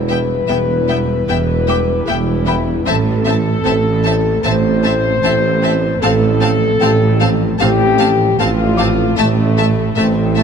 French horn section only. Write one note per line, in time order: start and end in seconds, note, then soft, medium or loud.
0.00 1.25 B4 loud
1.27 2.05 B4 loud
2.08 2.86 E4 loud
2.86 4.41 A4 loud
4.43 6.02 C5 loud
6.01 7.42 A4 loud
7.59 8.37 G4 loud
8.39 9.18 F4 loud
9.17 9.96 A3 loud
9.97 10.43 C4 loud